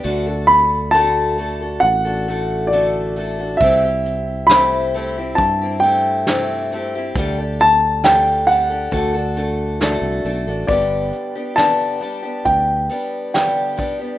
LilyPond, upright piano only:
\new Staff \with { instrumentName = "Upright piano" } { \time 4/4 \key g \major \tempo 4 = 68 r8 b''8 a''4 fis''4 d''8. r16 | e''4 b''4 a''8 g''4 r8 | r8 a''8 g''8 fis''4. r4 | d''4 a''4 g''4 g''8. r16 | }